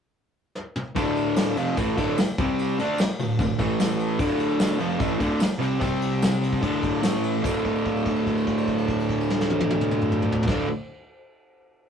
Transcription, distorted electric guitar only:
0.95 D2 A2 D3
1.57 F2 C3 F3
1.77 A2 E3 A3
1.97 D2 A2 D3
2.19 muted distorted electric guitar stroke
2.39 C3 G3 C4
2.79 D3 A3 D4
2.99 muted distorted electric guitar stroke
3.19 D2 A2
3.39 D2 A2
3.59 A2 E3 A3
4.19 D2 A2 D3
4.79 F2 C3 F3
4.99 A2 E3 A3
5.19 D2 A2 D3
5.39 muted distorted electric guitar stroke
5.59 C3 G3 C4
5.80 C3 G3 C4
6.62 D2 A2 D3
7.02 A2 E3 A3
7.43 D2 A2 D3
10.47 D2 A2 D3

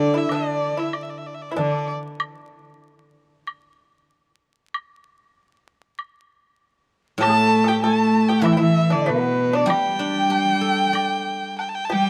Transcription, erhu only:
Already playing: D5
0.17 E5
0.35 D5
0.79 E5
0.93 D5
1.03 E5
1.10 D5
1.18 E5
1.27 D5
1.34 E5
1.42 D5
1.51 E5
1.61 D5
7.20 A5
7.68 G5
7.82 A5
8.29 G5
8.44 E5
8.53 G5
8.58 E5
8.92 D5
9.09 B4
9.55 D5
9.70 G5
11.59 G5
11.69 A5
11.75 G5
11.85 A5
11.92 G5

